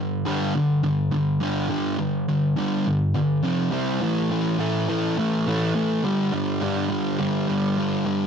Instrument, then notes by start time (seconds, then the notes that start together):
distorted electric guitar
Already playing: G2 D3
0.25 G2 D3 G3
0.55 G2 D3
0.83 G2 D3
1.11 G2 D3
1.40 G2 D3 G3
1.69 G2 D3 G3
1.99 G2 D3
2.29 G2 D3
2.57 G2 D3 G3
2.86 G2 D3
3.14 G2 D3
3.43 F2 C3 F3
3.71 C3 G3 C4
4.01 A2 E3 A3
4.30 A2 E3 A3
4.59 A2 E3 A3
4.89 A2 E3 A3
5.18 A2 E3 A3
5.47 A2 E3 A3
5.75 A2 E3 A3
6.03 G2 D3 G3
6.32 G2 D3 G3
6.61 G2 D3 G3
6.89 G2 D3 G3
7.19 G2 D3 G3
7.48 G2 D3 G3
7.77 G2 D3 G3
8.05 G2 D3 G3